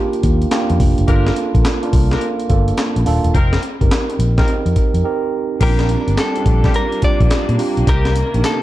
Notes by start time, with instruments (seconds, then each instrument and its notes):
Already playing: tine electric piano A#3 D4 F4 G4 F5
0.13 closed hi-hat
0.23 fingered electric bass D#2, kick, closed hi-hat
0.42 closed hi-hat
0.51 tine electric piano A#3 D4 F4 G4, snare, clap, closed hi-hat
0.70 fingered electric bass F2, closed hi-hat
0.80 fingered electric bass F1, kick, open hi-hat
0.98 fingered electric bass F#1, closed hi-hat
1.08 fingered electric bass G1, tine electric piano A#3 D4 F4 A4, horn section D4 F4 G4 A#4, kick, closed hi-hat
1.26 snare, closed hi-hat
1.36 closed hi-hat
1.55 fingered electric bass A#1, kick, closed hi-hat
1.65 snare, clap, closed hi-hat
1.83 tine electric piano A#3 D4 F4 A#4, closed hi-hat
1.93 fingered electric bass C2, kick, open hi-hat
2.11 horn section D4 F4 G4 A#4, snare, closed hi-hat
2.21 closed hi-hat
2.40 closed hi-hat
2.49 fingered electric bass G1, tine electric piano A#3 D4 F4 A4, kick, closed hi-hat
2.68 closed hi-hat
2.77 snare, clap, closed hi-hat
2.96 fingered electric bass A#1, closed hi-hat
3.06 fingered electric bass D#1, tine electric piano A#3 D4 F4 A4, open hi-hat
3.24 fingered electric bass E1, closed hi-hat
3.34 fingered electric bass F1, horn section C4 D#4 F4 A#4, kick, closed hi-hat
3.53 snare, closed hi-hat
3.63 closed hi-hat
3.81 fingered electric bass G1, tine electric piano C4 D#4 G4 A#4, kick, closed hi-hat
3.91 snare, clap, closed hi-hat
4.10 closed hi-hat
4.19 fingered electric bass A#1, closed hi-hat
4.37 horn section C4 D#4 F4 A#4, tine electric piano C4 D#4 G4 A#4, kick, snare, closed hi-hat
4.48 closed hi-hat
4.66 fingered electric bass F2, closed hi-hat
4.76 kick, closed hi-hat
4.94 fingered electric bass F2, closed hi-hat
5.04 tine electric piano C4 D#4 G4 A#4
5.60 fingered electric bass A#1, string section G3 A#3 D4, horn section A#3 D4 F4 G4, tine electric piano C4 C#4 F4 G4, clean electric guitar A#4, kick, closed hi-hat, crash
5.67 tine electric piano D4
5.79 snare, closed hi-hat
5.89 closed hi-hat
6.08 fingered electric bass G1, closed hi-hat
6.17 clean electric guitar A4, snare, clap, closed hi-hat
6.36 tine electric piano C4 D4 F4 G4, closed hi-hat
6.46 fingered electric bass A#1, kick, closed hi-hat
6.64 horn section A#3 D4 F4 G4, kick, snare, closed hi-hat
6.74 clean electric guitar A#4, closed hi-hat
6.92 closed hi-hat
7.02 tine electric piano C4 D4 F4 G4, clean electric guitar D5, muted fingered electric bass stroke, kick, closed hi-hat
7.20 fingered electric bass A#1, kick, closed hi-hat
7.31 snare, clap, closed hi-hat
7.49 fingered electric bass A#2, closed hi-hat
7.58 tine electric piano C4 D4 F4 G4, open hi-hat
7.77 fingered electric bass B1, closed hi-hat
7.87 fingered electric bass C2, string section C3 D#3, horn section A#3 C4 D#4 G4, clean electric guitar A#4, kick, closed hi-hat, tambourine
8.05 snare, closed hi-hat
8.15 closed hi-hat, tambourine
8.34 fingered electric bass A#1, tine electric piano A#3 D4 D#4 G4, closed hi-hat
8.44 clean electric guitar A4, snare, clap, closed hi-hat, tambourine